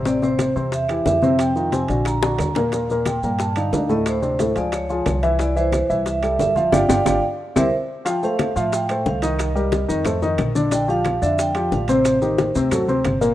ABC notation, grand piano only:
X:1
M:4/4
L:1/8
Q:1/4=180
K:C
V:1 name="Grand piano"
[C,Cc] [C,Cc]2 [C,Cc]2 [E,EG] [E,EG] [C,Cc]- | [C,Cc] [_E,_EF] [C,Cc] [D,D^F]2 [D,DF]2 [_B,,_B,_B] | [_B,,_B,_B] [B,,B,B]2 [B,,B,B]2 [D,D_E] [D,DE] [A,,A,A]- | [A,,A,A] [C,CD] [A,,A,A] [F,F_A]2 [F,FA]2 [E,Ee] |
[E,Ee] [E,Ee]2 [E,Ee]2 [G,GA] [G,GA] [F,Ff] | [DFG] [DFG] [DFG] z2 [CEG] z2 | [K:F] [F,Ff] [A,Ac]2 [F,Ff]2 [A,Ac]2 [_E,_E_e]- | [_E,_E_e] [G,GB]2 [E,Ee] [A,Ac] [E,Ee]2 [D,Dd] |
[D,Dd] [F,FG]2 [D,Dd]2 [F,FG]2 [C,Cc]- | [C,Cc] [_E,_EG]2 [C,Cc] [^F,^FA] [C,Cc]2 [B,,B,B] |]